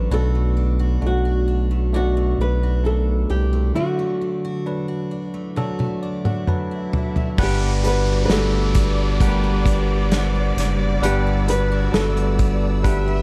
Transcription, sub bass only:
0.11 B1
1.02 B1
2.38 B1
3.30 C2
7.38 G1
8.29 G1
10.56 F#1
11.01 G1
11.93 G1

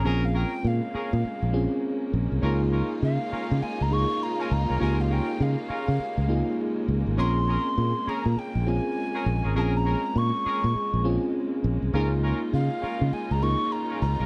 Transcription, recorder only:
0.07 G#5
0.25 F5
0.36 G5
0.67 F5
3.04 F5
3.62 G#5
3.82 A#5
3.93 C#6
4.23 A#5
4.41 G#5
4.52 A#5
4.82 G#5
5.01 F5
5.12 G5
5.42 F5
7.19 C6
8.09 A#5
8.39 G5
8.68 G#5
9.57 G#5 A5
9.77 A#5
10.18 C#6
12.54 F5
13.13 G#5
13.31 A#5
13.43 C#6
13.72 A#5
14.01 A#5

